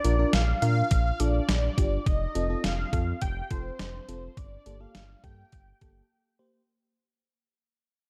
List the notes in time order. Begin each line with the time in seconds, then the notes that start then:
Already playing: D5
0.04 A#1 D4 F4 A#4, closed hi-hat
0.19 D4 F4 A#4
0.33 A#1 F5, snare, closed hi-hat
0.62 A#2 D4 F4 A#4 F5, closed hi-hat
0.91 A#1, kick, closed hi-hat
1.20 A#1 D4 F4 A4 D5, closed hi-hat
1.49 A#1, snare, closed hi-hat
1.78 G1 D4 F4 G4, kick, closed hi-hat
2.06 F1 D#5, kick, closed hi-hat
2.35 F1 C4 F4 A4, closed hi-hat
2.50 C4 F4 A4
2.64 F1 F5, snare, closed hi-hat
2.93 F2 C4 F4 A4, kick, closed hi-hat
3.22 F1 G5, kick, closed hi-hat
3.51 F1 C4 F4 A4 C5, kick, closed hi-hat
3.79 F1, snare, closed hi-hat
4.08 F1 C4 F4 A4, closed hi-hat
4.37 G1 D5, kick, closed hi-hat
4.66 G1 A#3 G4 A4, closed hi-hat
4.80 A#3 G4 A4 F5
4.95 G1, snare, closed hi-hat
5.24 G2 A#3 G4 A4 G5, kick, closed hi-hat
5.52 G1, kick, closed hi-hat
5.81 G1 A#3 G4 A4, kick, closed hi-hat
6.39 A#3 G4 C5